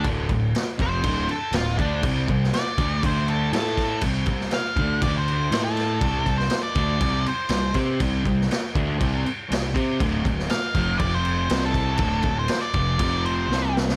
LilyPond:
<<
  \new Staff \with { instrumentName = "Lead electric guitar" } { \time 4/4 \key c \lydian \tempo 4 = 120 r4. c''4 a'8 f'8 d'8 | r4 d''4 c''8 a'8 a'4 | r4 f''4 d''16 c''4 a'8.~ | a'8. c''8 d''4~ d''16 c''4 r8 |
r1 | r4 f''4 d''16 c''4 a'8.~ | a'8. c''8 d''4~ d''16 c''4 r8 | }
  \new Staff \with { instrumentName = "Distorted electric guitar" } { \clef bass \time 4/4 \key c \lydian <d, a, d>8 <d, a,>8 r8 <f, c f>8 <d, a, d>8 r8 <d, a,>8 <d a d'>8 | <c g c'>8 <c g>8 r8 <d a d'>8 <d a d'>4 <a e' a'>4 | <c g c'>8 <c g>8 r8 <d a d'>8 <d a d'>4 <a e' a'>4 | <c g c'>8 <c g>8 r8 <d a d'>8 <c g c'>8 r8 <c g>8 <c' g' c''>8 |
<c g c'>8 <c g>8 r8 <d a d'>8 <c g c'>8 r8 <c g>8 <c' g' c''>8 | <d, a, d>8 <d, a,>8 r8 <f, c f>8 <f, c f>4 <c g c'>4 | <d, a, d>8 <d, a,>8 r8 <f, c f>8 <f, c f>4 <c g c'>4 | }
  \new Staff \with { instrumentName = "Picked electric bass" } { \clef bass \time 4/4 \key c \lydian d,,8 d,,8 r8 f,,8 d,,8 r8 d,,8 d,8 | c,8 c,8 r8 d,8 d,4 a,4 | c,8 c,8 r8 d,8 d,4 a,4 | c,8 c,8 r8 d,8 c,8 r8 c,8 c8 |
c,8 c,8 r8 d,8 c,8 r8 c,8 c8 | d,,8 d,,8 r8 f,,8 f,,4 c,4 | d,,8 d,,8 r8 f,,8 f,,4 c,4 | }
  \new DrumStaff \with { instrumentName = "Drums" } \drummode { \time 4/4 <cymc bd>8 <cymc bd>8 <cymc sn>8 <cymc bd>8 <cymc bd>8 cymc8 <cymc sn>8 <cymc bd>8 | <cymc bd>8 <cymc bd>16 sn16 <cymc sn>8 <cymc bd>8 <cymc bd>8 cymc8 <cymc sn>8 <cymc bd sn>8 | <cymc bd>8 <cymc bd>16 sn16 <cymc sn>8 <cymc bd>8 <cymc bd>8 cymc8 <cymc sn>8 <cymc sn>8 | <cymc bd>8 <cymc bd>16 sn16 <cymc sn>8 <cymc bd>8 <cymc bd>8 cymc8 <cymc sn>8 <cymc bd sn>8 |
<cymc bd>8 <cymc bd>16 sn16 <cymc sn>8 <cymc bd>8 <cymc bd>8 cymc8 <cymc sn>8 <cymc bd>8 | <cymc bd>8 <cymc bd>16 sn16 <cymc sn>8 <cymc bd>8 <cymc bd>8 cymc8 <cymc sn>8 <cymc bd>8 | <cymc bd>8 <cymc bd>8 <cymc sn>8 <cymc bd>8 <cymc bd>8 cymc8 sn8 sn16 sn16 | }
>>